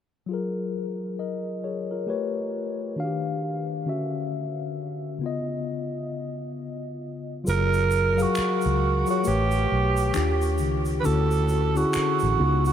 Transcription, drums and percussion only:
0, 0, Header, 1, 2, 480
1, 0, Start_track
1, 0, Tempo, 895522
1, 156, Time_signature, 4, 2, 24, 8
1, 6822, End_track
2, 0, Start_track
2, 0, Title_t, "Drums"
2, 4004, Note_on_c, 9, 82, 56
2, 4057, Note_off_c, 9, 82, 0
2, 4146, Note_on_c, 9, 82, 42
2, 4200, Note_off_c, 9, 82, 0
2, 4239, Note_on_c, 9, 82, 43
2, 4292, Note_off_c, 9, 82, 0
2, 4388, Note_on_c, 9, 82, 39
2, 4441, Note_off_c, 9, 82, 0
2, 4477, Note_on_c, 9, 26, 56
2, 4477, Note_on_c, 9, 82, 54
2, 4530, Note_off_c, 9, 26, 0
2, 4530, Note_off_c, 9, 82, 0
2, 4617, Note_on_c, 9, 82, 41
2, 4670, Note_off_c, 9, 82, 0
2, 4858, Note_on_c, 9, 82, 45
2, 4912, Note_off_c, 9, 82, 0
2, 4954, Note_on_c, 9, 82, 67
2, 5007, Note_off_c, 9, 82, 0
2, 5098, Note_on_c, 9, 82, 36
2, 5152, Note_off_c, 9, 82, 0
2, 5342, Note_on_c, 9, 82, 49
2, 5396, Note_off_c, 9, 82, 0
2, 5435, Note_on_c, 9, 26, 58
2, 5435, Note_on_c, 9, 82, 55
2, 5488, Note_off_c, 9, 26, 0
2, 5488, Note_off_c, 9, 82, 0
2, 5584, Note_on_c, 9, 82, 42
2, 5637, Note_off_c, 9, 82, 0
2, 5670, Note_on_c, 9, 82, 43
2, 5724, Note_off_c, 9, 82, 0
2, 5817, Note_on_c, 9, 82, 43
2, 5871, Note_off_c, 9, 82, 0
2, 5920, Note_on_c, 9, 82, 53
2, 5973, Note_off_c, 9, 82, 0
2, 6062, Note_on_c, 9, 82, 42
2, 6116, Note_off_c, 9, 82, 0
2, 6156, Note_on_c, 9, 82, 43
2, 6209, Note_off_c, 9, 82, 0
2, 6304, Note_on_c, 9, 82, 39
2, 6358, Note_off_c, 9, 82, 0
2, 6396, Note_on_c, 9, 26, 57
2, 6396, Note_on_c, 9, 82, 56
2, 6450, Note_off_c, 9, 26, 0
2, 6450, Note_off_c, 9, 82, 0
2, 6536, Note_on_c, 9, 82, 42
2, 6589, Note_off_c, 9, 82, 0
2, 6782, Note_on_c, 9, 82, 44
2, 6822, Note_off_c, 9, 82, 0
2, 6822, End_track
0, 0, End_of_file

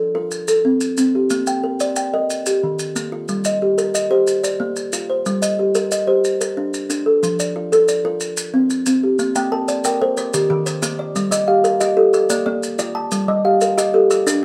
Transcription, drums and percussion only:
0, 0, Header, 1, 2, 480
1, 0, Start_track
1, 0, Key_signature, -2, "major"
1, 0, Tempo, 328228
1, 1904, Time_signature, 12, 3, 24, 8
1, 21129, End_track
2, 0, Start_track
2, 0, Title_t, "Drums"
2, 456, Note_on_c, 9, 70, 61
2, 603, Note_off_c, 9, 70, 0
2, 699, Note_on_c, 9, 70, 70
2, 845, Note_off_c, 9, 70, 0
2, 1179, Note_on_c, 9, 70, 54
2, 1325, Note_off_c, 9, 70, 0
2, 1423, Note_on_c, 9, 70, 60
2, 1570, Note_off_c, 9, 70, 0
2, 1901, Note_on_c, 9, 70, 51
2, 2047, Note_off_c, 9, 70, 0
2, 2145, Note_on_c, 9, 70, 62
2, 2292, Note_off_c, 9, 70, 0
2, 2631, Note_on_c, 9, 70, 50
2, 2777, Note_off_c, 9, 70, 0
2, 2866, Note_on_c, 9, 70, 72
2, 3012, Note_off_c, 9, 70, 0
2, 3364, Note_on_c, 9, 70, 50
2, 3510, Note_off_c, 9, 70, 0
2, 3599, Note_on_c, 9, 70, 72
2, 3745, Note_off_c, 9, 70, 0
2, 4081, Note_on_c, 9, 70, 52
2, 4227, Note_off_c, 9, 70, 0
2, 4327, Note_on_c, 9, 70, 61
2, 4473, Note_off_c, 9, 70, 0
2, 4803, Note_on_c, 9, 70, 51
2, 4949, Note_off_c, 9, 70, 0
2, 5038, Note_on_c, 9, 70, 65
2, 5184, Note_off_c, 9, 70, 0
2, 5531, Note_on_c, 9, 70, 52
2, 5677, Note_off_c, 9, 70, 0
2, 5773, Note_on_c, 9, 70, 68
2, 5919, Note_off_c, 9, 70, 0
2, 6247, Note_on_c, 9, 70, 54
2, 6393, Note_off_c, 9, 70, 0
2, 6492, Note_on_c, 9, 70, 70
2, 6638, Note_off_c, 9, 70, 0
2, 6964, Note_on_c, 9, 70, 56
2, 7110, Note_off_c, 9, 70, 0
2, 7205, Note_on_c, 9, 70, 69
2, 7351, Note_off_c, 9, 70, 0
2, 7690, Note_on_c, 9, 70, 52
2, 7836, Note_off_c, 9, 70, 0
2, 7932, Note_on_c, 9, 70, 66
2, 8078, Note_off_c, 9, 70, 0
2, 8406, Note_on_c, 9, 70, 53
2, 8552, Note_off_c, 9, 70, 0
2, 8650, Note_on_c, 9, 70, 71
2, 8796, Note_off_c, 9, 70, 0
2, 9131, Note_on_c, 9, 70, 55
2, 9277, Note_off_c, 9, 70, 0
2, 9375, Note_on_c, 9, 70, 72
2, 9521, Note_off_c, 9, 70, 0
2, 9852, Note_on_c, 9, 70, 54
2, 9999, Note_off_c, 9, 70, 0
2, 10091, Note_on_c, 9, 70, 59
2, 10237, Note_off_c, 9, 70, 0
2, 10577, Note_on_c, 9, 70, 50
2, 10723, Note_off_c, 9, 70, 0
2, 10816, Note_on_c, 9, 70, 67
2, 10962, Note_off_c, 9, 70, 0
2, 11298, Note_on_c, 9, 70, 54
2, 11445, Note_off_c, 9, 70, 0
2, 11527, Note_on_c, 9, 70, 68
2, 11673, Note_off_c, 9, 70, 0
2, 11997, Note_on_c, 9, 70, 57
2, 12144, Note_off_c, 9, 70, 0
2, 12241, Note_on_c, 9, 70, 75
2, 12387, Note_off_c, 9, 70, 0
2, 12724, Note_on_c, 9, 70, 54
2, 12871, Note_off_c, 9, 70, 0
2, 12957, Note_on_c, 9, 70, 68
2, 13103, Note_off_c, 9, 70, 0
2, 13438, Note_on_c, 9, 70, 52
2, 13584, Note_off_c, 9, 70, 0
2, 13679, Note_on_c, 9, 70, 67
2, 13825, Note_off_c, 9, 70, 0
2, 14159, Note_on_c, 9, 70, 52
2, 14305, Note_off_c, 9, 70, 0
2, 14394, Note_on_c, 9, 70, 77
2, 14540, Note_off_c, 9, 70, 0
2, 14874, Note_on_c, 9, 70, 58
2, 15021, Note_off_c, 9, 70, 0
2, 15116, Note_on_c, 9, 70, 76
2, 15262, Note_off_c, 9, 70, 0
2, 15595, Note_on_c, 9, 70, 59
2, 15741, Note_off_c, 9, 70, 0
2, 15831, Note_on_c, 9, 70, 73
2, 15977, Note_off_c, 9, 70, 0
2, 16315, Note_on_c, 9, 70, 57
2, 16461, Note_off_c, 9, 70, 0
2, 16553, Note_on_c, 9, 70, 77
2, 16699, Note_off_c, 9, 70, 0
2, 17030, Note_on_c, 9, 70, 53
2, 17176, Note_off_c, 9, 70, 0
2, 17264, Note_on_c, 9, 70, 78
2, 17410, Note_off_c, 9, 70, 0
2, 17746, Note_on_c, 9, 70, 57
2, 17893, Note_off_c, 9, 70, 0
2, 17983, Note_on_c, 9, 70, 81
2, 18129, Note_off_c, 9, 70, 0
2, 18471, Note_on_c, 9, 70, 57
2, 18617, Note_off_c, 9, 70, 0
2, 18701, Note_on_c, 9, 70, 70
2, 18847, Note_off_c, 9, 70, 0
2, 19177, Note_on_c, 9, 70, 60
2, 19323, Note_off_c, 9, 70, 0
2, 19903, Note_on_c, 9, 70, 56
2, 20049, Note_off_c, 9, 70, 0
2, 20155, Note_on_c, 9, 70, 78
2, 20301, Note_off_c, 9, 70, 0
2, 20627, Note_on_c, 9, 70, 62
2, 20773, Note_off_c, 9, 70, 0
2, 20871, Note_on_c, 9, 70, 80
2, 21017, Note_off_c, 9, 70, 0
2, 21129, End_track
0, 0, End_of_file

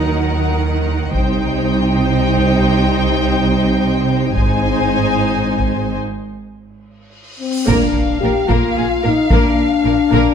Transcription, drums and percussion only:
0, 0, Header, 1, 2, 480
1, 0, Start_track
1, 0, Tempo, 536193
1, 1029, Time_signature, 6, 3, 24, 8
1, 3911, Tempo, 551978
1, 6791, Tempo, 541516
1, 9150, End_track
2, 0, Start_track
2, 0, Title_t, "Taiko and cinematic ensemble drums"
2, 1024, Note_on_c, 9, 41, 47
2, 1114, Note_off_c, 9, 41, 0
2, 2106, Note_on_c, 9, 41, 29
2, 2196, Note_off_c, 9, 41, 0
2, 3908, Note_on_c, 9, 41, 50
2, 3995, Note_off_c, 9, 41, 0
2, 4976, Note_on_c, 9, 41, 30
2, 5063, Note_off_c, 9, 41, 0
2, 6790, Note_on_c, 9, 41, 80
2, 6879, Note_off_c, 9, 41, 0
2, 7512, Note_on_c, 9, 41, 58
2, 7600, Note_off_c, 9, 41, 0
2, 8230, Note_on_c, 9, 41, 76
2, 8318, Note_off_c, 9, 41, 0
2, 8956, Note_on_c, 9, 41, 63
2, 9045, Note_off_c, 9, 41, 0
2, 9150, End_track
0, 0, End_of_file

